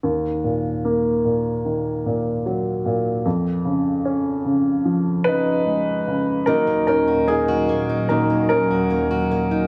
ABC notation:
X:1
M:4/4
L:1/16
Q:1/4=74
K:Ebm
V:1 name="Steel-string acoustic guitar"
z16 | z16 | E, B, E G B, G B, E E, B, E G B, G B, E |]
V:2 name="Upright piano"
z16 | z8 z2 [Ec]6 | [EB]2 [DB]2 [EA]4 [EB]2 [DB]4 z2 |]
V:3 name="Upright piano" clef=bass
E,,2 B,,2 B,2 B,,2 E,2 B,,2 G,2 B,,2 | F,,2 D,2 D2 D,2 F,2 D,2 A,2 D,2 | [E,G,B,]6 z2 [E,G,B,]2 z6 |]
V:4 name="Ambient pad" clef=bass
z16 | z16 | [E,,B,,G,]16 |]